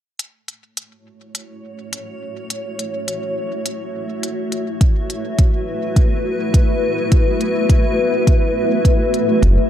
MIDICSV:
0, 0, Header, 1, 4, 480
1, 0, Start_track
1, 0, Key_signature, 3, "minor"
1, 0, Tempo, 576923
1, 162, Time_signature, 4, 2, 24, 8
1, 8069, End_track
2, 0, Start_track
2, 0, Title_t, "Ambient pad"
2, 0, Program_c, 0, 92
2, 162, Note_on_c, 0, 57, 67
2, 461, Note_on_c, 0, 64, 66
2, 506, Note_on_c, 0, 73, 86
2, 604, Note_on_c, 0, 66, 69
2, 1417, Note_on_c, 0, 76, 84
2, 3948, Note_on_c, 0, 71, 90
2, 4104, Note_off_c, 0, 73, 0
2, 8069, Note_off_c, 0, 57, 0
2, 8069, Note_off_c, 0, 64, 0
2, 8069, Note_off_c, 0, 66, 0
2, 8069, Note_off_c, 0, 71, 0
2, 8069, Note_off_c, 0, 76, 0
2, 8069, End_track
3, 0, Start_track
3, 0, Title_t, "Sub bass"
3, 0, Program_c, 1, 38
3, 7841, Note_on_c, 1, 30, 92
3, 7959, Note_off_c, 1, 30, 0
3, 8069, End_track
4, 0, Start_track
4, 0, Title_t, "Drums"
4, 161, Note_on_c, 9, 42, 48
4, 244, Note_off_c, 9, 42, 0
4, 402, Note_on_c, 9, 42, 26
4, 485, Note_off_c, 9, 42, 0
4, 642, Note_on_c, 9, 42, 46
4, 725, Note_off_c, 9, 42, 0
4, 1122, Note_on_c, 9, 42, 47
4, 1205, Note_off_c, 9, 42, 0
4, 1604, Note_on_c, 9, 42, 45
4, 1687, Note_off_c, 9, 42, 0
4, 2082, Note_on_c, 9, 42, 51
4, 2165, Note_off_c, 9, 42, 0
4, 2322, Note_on_c, 9, 42, 26
4, 2406, Note_off_c, 9, 42, 0
4, 2562, Note_on_c, 9, 42, 49
4, 2645, Note_off_c, 9, 42, 0
4, 3042, Note_on_c, 9, 42, 48
4, 3125, Note_off_c, 9, 42, 0
4, 3522, Note_on_c, 9, 42, 47
4, 3605, Note_off_c, 9, 42, 0
4, 3762, Note_on_c, 9, 42, 27
4, 3845, Note_off_c, 9, 42, 0
4, 4001, Note_on_c, 9, 36, 97
4, 4001, Note_on_c, 9, 42, 49
4, 4084, Note_off_c, 9, 36, 0
4, 4085, Note_off_c, 9, 42, 0
4, 4242, Note_on_c, 9, 42, 27
4, 4325, Note_off_c, 9, 42, 0
4, 4481, Note_on_c, 9, 36, 96
4, 4481, Note_on_c, 9, 42, 48
4, 4564, Note_off_c, 9, 36, 0
4, 4564, Note_off_c, 9, 42, 0
4, 4961, Note_on_c, 9, 36, 94
4, 4962, Note_on_c, 9, 42, 47
4, 5045, Note_off_c, 9, 36, 0
4, 5045, Note_off_c, 9, 42, 0
4, 5441, Note_on_c, 9, 36, 97
4, 5443, Note_on_c, 9, 42, 47
4, 5524, Note_off_c, 9, 36, 0
4, 5526, Note_off_c, 9, 42, 0
4, 5922, Note_on_c, 9, 36, 100
4, 5922, Note_on_c, 9, 42, 49
4, 6005, Note_off_c, 9, 36, 0
4, 6005, Note_off_c, 9, 42, 0
4, 6162, Note_on_c, 9, 42, 25
4, 6246, Note_off_c, 9, 42, 0
4, 6402, Note_on_c, 9, 36, 98
4, 6403, Note_on_c, 9, 42, 46
4, 6485, Note_off_c, 9, 36, 0
4, 6486, Note_off_c, 9, 42, 0
4, 6882, Note_on_c, 9, 36, 95
4, 6884, Note_on_c, 9, 42, 46
4, 6966, Note_off_c, 9, 36, 0
4, 6967, Note_off_c, 9, 42, 0
4, 7362, Note_on_c, 9, 36, 99
4, 7364, Note_on_c, 9, 42, 45
4, 7445, Note_off_c, 9, 36, 0
4, 7447, Note_off_c, 9, 42, 0
4, 7604, Note_on_c, 9, 42, 27
4, 7687, Note_off_c, 9, 42, 0
4, 7841, Note_on_c, 9, 36, 94
4, 7844, Note_on_c, 9, 42, 52
4, 7925, Note_off_c, 9, 36, 0
4, 7928, Note_off_c, 9, 42, 0
4, 8069, End_track
0, 0, End_of_file